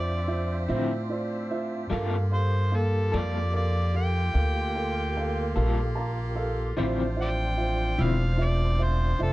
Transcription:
Already playing: upright bass F2, horn section C4 D4 F4, grand piano F4 C5 E5, tonewheel organ F4 C5 E5, harmonica D5
0.28 grand piano F4 C5 E5
0.68 upright bass A2, clean electric guitar D3 F3 C4 E4, grand piano F4 C5 E5
1.09 grand piano F4 C5 D5
1.50 grand piano F4 C5 E5
1.90 upright bass G2, clean electric guitar G3 A#3 F4 A4, tonewheel organ A#3 F4 G4, horn section A#3 G4, grand piano A4 A#4 F5
2.31 grand piano A4 A#4 F5, harmonica C5
2.72 grand piano A#3 A4 F5
2.76 harmonica A4
3.12 upright bass F2, clean electric guitar G3 A#3 F4 A4, grand piano A4 A#4 F5, harmonica D5
3.53 grand piano A4 A#4 F5, harmonica D5
3.94 grand piano A4 A#4 F5, harmonica G5
4.34 upright bass D2, grand piano A4 A#4 F5
4.75 grand piano A4 A#4 F5
5.17 grand piano A4 A#4 F5
5.56 upright bass A#1, clean electric guitar G3 A#3 F4 A4, grand piano A4 A#4 F5
5.95 grand piano A#4 F5 A5 A#5
6.35 grand piano A4 A#4 F5
6.77 upright bass A1, clean electric guitar D3 F3 C4 E4, tonewheel organ F3 D4 C5, horn section C4 D4, grand piano F4 C5 E5
7.16 grand piano F4 C5 E5
7.22 harmonica D5 G5
7.57 grand piano F4 C5 E5
7.98 upright bass E1, clean electric guitar D3 F3 C4 E4, grand piano F4 C5 E6
8.03 harmonica F5
8.37 grand piano F4 C5 E5
8.44 harmonica D5
8.79 grand piano F4 C5 E5
8.83 harmonica C5
9.19 upright bass F1, grand piano F4 C5 E5
9.23 harmonica A4

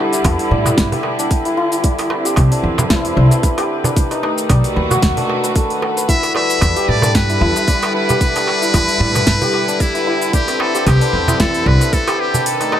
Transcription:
Already playing: string section D3 G3 E4 B4, santur B3 D4 E4 G4 B4 D5
0.13 santur E4, open hi-hat, shaker
0.24 upright bass E2, santur E4, kick, open hi-hat, darbuka tek, shaker
0.39 open hi-hat, shaker
0.51 upright bass A2, santur D5
0.66 darbuka tek, darbuka dum, shaker
0.78 upright bass G2, santur B4, kick, snare, open hi-hat, shaker
0.92 santur G4, open hi-hat, darbuka dum, shaker
1.03 darbuka tek
1.19 santur D4, open hi-hat, shaker
1.31 kick, open hi-hat, shaker
1.45 santur E4, open hi-hat, shaker
1.57 santur E4
1.72 open hi-hat, shaker
1.84 santur D5, kick, open hi-hat, shaker
1.99 open hi-hat, darbuka ka, shaker
2.10 santur B4, darbuka ka, darbuka tek
2.15 string section C4
2.25 santur G4, open hi-hat, shaker
2.36 upright bass C2, kick, open hi-hat, darbuka tek, shaker
2.52 santur D4, string section B4, open hi-hat, shaker
2.64 upright bass E2
2.78 santur E4, darbuka tek, darbuka dum, shaker
2.90 upright bass E2, santur E4, kick, snare, open hi-hat, shaker
3.05 open hi-hat, shaker
3.17 upright bass C2, santur D5
3.31 open hi-hat, darbuka ka, shaker
3.43 santur B4, kick, open hi-hat, shaker
3.58 santur G4, open hi-hat, darbuka tek, shaker
3.84 santur D4, open hi-hat, darbuka dum, shaker
3.96 string section D#3, kick, open hi-hat, shaker
4.11 santur D#4, open hi-hat, darbuka ka, shaker
4.22 string section A3, santur D#4, darbuka ka, darbuka tek
4.38 open hi-hat, shaker
4.49 upright bass B1, santur D5, kick, open hi-hat, darbuka tek, shaker
4.59 string section F#4
4.64 open hi-hat, shaker
4.76 upright bass D#2, santur B4, darbuka ka
4.91 santur F#4, darbuka tek, darbuka dum, shaker
5.02 upright bass D#2, kick, snare, open hi-hat, shaker
5.17 santur D4, open hi-hat, darbuka dum, shaker
5.30 darbuka tek
5.44 santur B4, open hi-hat, shaker
5.55 santur A4, kick, open hi-hat, shaker
5.70 open hi-hat, shaker
5.82 santur B4, darbuka tek
5.97 santur B4, open hi-hat, shaker
6.09 string section D3, santur E4, muted trumpet E5, kick, open hi-hat, shaker
6.23 open hi-hat, darbuka ka, shaker
6.29 string section G3
6.35 santur D5, muted trumpet E5, darbuka ka, darbuka tek
6.48 string section E4, open hi-hat, shaker
6.61 upright bass E2, santur B4, kick, open hi-hat, darbuka tek, shaker
6.76 santur G4, open hi-hat, shaker
6.88 upright bass A2, muted trumpet D5
7.02 santur D4, darbuka tek, darbuka dum, shaker
7.15 upright bass G2, muted trumpet B4, kick, snare, open hi-hat, shaker
7.29 santur E4, open hi-hat, shaker
7.41 upright bass E2, santur E4
7.56 open hi-hat, darbuka ka, shaker
7.68 santur D5, kick, open hi-hat, shaker
7.82 open hi-hat, darbuka tek, shaker
7.94 santur B4, muted trumpet B4
8.09 santur G4, open hi-hat, darbuka dum, shaker
8.21 kick, open hi-hat, shaker
8.35 santur D4, open hi-hat, darbuka ka, shaker
8.47 darbuka ka, darbuka tek
8.62 santur E4, open hi-hat, shaker
8.74 upright bass E2, santur E4, kick, open hi-hat, darbuka tek, shaker
8.89 open hi-hat, shaker
9.00 upright bass A2, santur D5
9.15 darbuka tek, darbuka dum, shaker
9.27 upright bass G2, santur B4, kick, snare, open hi-hat, shaker
9.42 santur G4, open hi-hat, darbuka dum, shaker
9.54 darbuka tek
9.68 santur D4, open hi-hat, shaker
9.80 muted trumpet E4, kick, open hi-hat, shaker
9.95 santur E4, open hi-hat, shaker
10.07 santur E4
10.22 open hi-hat, shaker
10.33 muted trumpet G4, santur D5, kick, open hi-hat, shaker
10.44 string section C4, open hi-hat, darbuka ka
10.49 shaker
10.60 muted trumpet A4, santur B4, darbuka ka, darbuka tek
10.75 santur G4, open hi-hat, shaker
10.87 upright bass C2, muted trumpet G4, kick, open hi-hat, darbuka tek, shaker
11.01 santur D4, open hi-hat, shaker
11.13 upright bass E2
11.28 santur E4, darbuka tek, darbuka dum, shaker
11.40 upright bass E2, santur E4, muted trumpet A4, kick, snare, open hi-hat, shaker
11.54 open hi-hat, shaker
11.66 upright bass C2, muted trumpet B4, santur D5
11.81 open hi-hat, darbuka ka, shaker
11.93 muted trumpet A4, santur B4, kick, open hi-hat, shaker
12.07 santur G4, open hi-hat, darbuka tek, shaker
12.20 muted trumpet G4
12.34 santur D4, open hi-hat, darbuka dum, shaker
12.46 string section D#3, muted trumpet A4, open hi-hat, shaker
12.60 string section A3, santur D#4, open hi-hat, darbuka ka, shaker
12.72 santur D#4, darbuka ka, darbuka tek

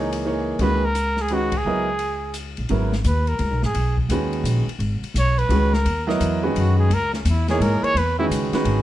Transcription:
Already playing: upright bass C#2, grand piano E3 A#3 D#4 G#4 C#5, trumpet D#4
0.13 ride
0.25 grand piano E3 A#3 D#4 G#4 C#5
0.59 upright bass C#2, grand piano D#3 G#3 C#4 F#4 B4, trumpet B4, ride
0.85 trumpet A#4
0.95 hi-hat pedal, ride
1.17 snare
1.22 trumpet G#4
1.28 grand piano D#3 G#3 C#4 F#4 B4, ride
1.34 trumpet F#4
1.52 kick, ride
1.57 trumpet G#4
1.65 upright bass C#2, grand piano F#3 B3 E4 A#4 D#5
1.99 ride
2.34 hi-hat pedal, ride
2.57 upright bass A#1, ride
2.69 upright bass G#1, grand piano C#3 F#3 B3 E4 A#4, ride
2.92 snare
3.04 upright bass D#2, trumpet B4, hi-hat pedal, ride
3.27 trumpet A#4, ride
3.39 upright bass C#2, ride
3.51 upright bass B1
3.63 upright bass G#1, trumpet G#4, snare
3.74 upright bass B1, ride
3.97 kick
4.09 upright bass D#2, grand piano D#3 G#3 C#4 F#4 B4, hi-hat pedal, ride
4.33 ride
4.43 upright bass A#1, hi-hat pedal, ride
4.67 muted upright bass stroke, ride
4.79 upright bass G#1, ride
5.02 muted upright bass stroke, ride
5.14 upright bass B1, hi-hat pedal, ride
5.19 trumpet C#5
5.38 trumpet B4, ride
5.49 upright bass C#2, grand piano D#3 G#3 C#4 F#4 B4, ride
5.73 trumpet A#4, snare
5.85 upright bass D#2, ride
6.07 grand piano F#3 B3 E4 A#4 D#5, snare
6.20 upright bass E2, hi-hat pedal, ride
6.43 grand piano D#3 G#3 C#4 F#4 B4
6.55 upright bass F#2, trumpet F#4, ride
6.79 trumpet G#4
6.89 upright bass C#2, ride
6.94 trumpet A#4
7.13 trumpet C#4, snare
7.25 upright bass E2, hi-hat pedal, ride
7.29 trumpet E4
7.48 grand piano E3 A#3 D#4 G#4 C#5, trumpet G#4, snare, ride
7.60 upright bass G#2, trumpet A#4, ride
7.82 trumpet C#5, muted upright bass stroke, ride
7.94 upright bass E2, trumpet B4, ride
8.19 grand piano D#3 G#3 C#4 F#4 B4, trumpet E4
8.29 upright bass C#2, hi-hat pedal, ride
8.52 grand piano D#3 G#3 C#4 F#4 B4, muted upright bass stroke, snare, ride
8.64 upright bass G#1, ride

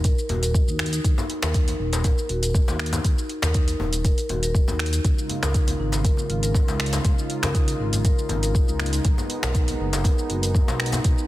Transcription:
Already playing: analog synth bass D#1
0.04 marimba A#4, kick, closed hi-hat, shaker
0.18 shaker
0.29 analog synth bass D#1, marimba F#4, closed hi-hat, djembe tone
0.43 marimba A#4, closed hi-hat, shaker
0.55 kick, shaker
0.68 analog synth bass D#2, marimba D#4, shaker
0.79 finger snap, closed hi-hat, djembe tone
0.86 closed hi-hat
0.93 marimba D#4, closed hi-hat, shaker
1.04 analog synth bass D#2, kick, closed hi-hat, shaker
1.18 marimba D#4, djembe tone, shaker
1.30 closed hi-hat
1.42 analog synth bass D#2, marimba A#4, finger snap, closed hi-hat, djembe slap, shaker
1.54 marimba D#4, kick, closed hi-hat, shaker
1.68 closed hi-hat, djembe tone, shaker
1.79 analog synth bass D#1, marimba D#4
1.93 closed hi-hat, djembe slap, shaker
2.04 marimba A#4, kick, closed hi-hat, djembe tone, shaker
2.18 shaker
2.29 analog synth bass D#1, marimba F#4, closed hi-hat
2.42 marimba A#4, closed hi-hat, shaker
2.55 kick, djembe tone, shaker
2.68 analog synth bass D#2, marimba D#4, djembe slap, shaker
2.79 finger snap, closed hi-hat
2.86 closed hi-hat
2.93 marimba D#4, closed hi-hat, djembe slap, djembe tone, shaker
3.04 analog synth bass D#2, kick, closed hi-hat, shaker
3.18 marimba D#4, shaker
3.29 closed hi-hat
3.42 analog synth bass D#2, marimba A#4, finger snap, closed hi-hat, djembe slap, djembe tone, shaker
3.54 marimba D#4, kick, closed hi-hat, shaker
3.68 closed hi-hat, shaker
3.79 analog synth bass D#1, marimba D#4, djembe tone
3.93 closed hi-hat, shaker
4.04 marimba A#4, kick, closed hi-hat, shaker
4.18 closed hi-hat, shaker
4.29 analog synth bass D#1, marimba F#4, closed hi-hat, djembe tone
4.43 marimba A#4, closed hi-hat, shaker
4.55 kick, shaker
4.68 analog synth bass D#2, marimba D#4, djembe tone, shaker
4.79 finger snap, closed hi-hat
4.86 closed hi-hat
4.93 marimba D#4, closed hi-hat, shaker
5.04 analog synth bass C#2, analog synth pad C#3 G#3 D#4 F4, kick, closed hi-hat, shaker
5.18 marimba D#4, shaker
5.29 closed hi-hat, djembe tone
5.43 analog synth bass C#2, marimba A#4, finger snap, closed hi-hat, djembe slap, shaker
5.54 marimba D#4, kick, closed hi-hat, shaker
5.67 closed hi-hat, djembe tone, shaker
5.79 analog synth bass G#1, marimba D#4
5.92 closed hi-hat, djembe slap, shaker
6.05 marimba A#4, kick, closed hi-hat, shaker
6.17 djembe tone, shaker
6.30 analog synth bass G#1, marimba F4, closed hi-hat
6.43 marimba A#4, closed hi-hat, shaker
6.55 kick, djembe tone, shaker
6.68 analog synth bass C#2, marimba D#4, djembe slap, shaker
6.80 finger snap, closed hi-hat
6.86 closed hi-hat
6.93 marimba D#4, closed hi-hat, djembe slap, shaker
7.05 analog synth bass C#2, kick, closed hi-hat, djembe tone, shaker
7.18 marimba D#4, shaker
7.30 closed hi-hat
7.43 analog synth bass C#2, marimba A#4, finger snap, closed hi-hat, djembe slap, djembe tone, shaker
7.55 marimba D#4, kick, closed hi-hat, shaker
7.68 closed hi-hat, shaker
7.80 analog synth bass G#1, marimba D#4
7.93 closed hi-hat, djembe tone, shaker
8.05 marimba A#4, kick, closed hi-hat, shaker
8.19 shaker
8.29 analog synth bass G#1, marimba F4, closed hi-hat, djembe tone
8.43 marimba A#4, closed hi-hat, shaker
8.55 kick, shaker
8.68 analog synth bass C#2, marimba D#4, shaker
8.80 finger snap, closed hi-hat, djembe tone
8.86 closed hi-hat
8.93 marimba D#4, closed hi-hat, shaker
9.05 analog synth bass B1, analog synth pad B3, kick, closed hi-hat, shaker
9.18 marimba D#4, djembe tone, shaker
9.30 closed hi-hat
9.43 analog synth bass B1, marimba A#4, finger snap, closed hi-hat, djembe slap, shaker
9.54 marimba D#4, kick, closed hi-hat, shaker
9.68 closed hi-hat, djembe tone, shaker
9.80 analog synth bass F#1, marimba D#4
9.93 closed hi-hat, djembe slap, shaker
10.04 marimba A#4, kick, closed hi-hat, djembe tone, shaker
10.18 shaker
10.29 analog synth bass F#1, marimba F#4, closed hi-hat
10.42 marimba A#4, closed hi-hat, shaker
10.55 kick, djembe tone, shaker
10.67 analog synth bass B1, marimba D#4, djembe slap, shaker
10.80 finger snap, closed hi-hat
10.86 closed hi-hat
10.92 marimba D#4, closed hi-hat, djembe slap, djembe tone, shaker
11.04 analog synth bass B1, kick, closed hi-hat, shaker
11.18 marimba D#4, shaker

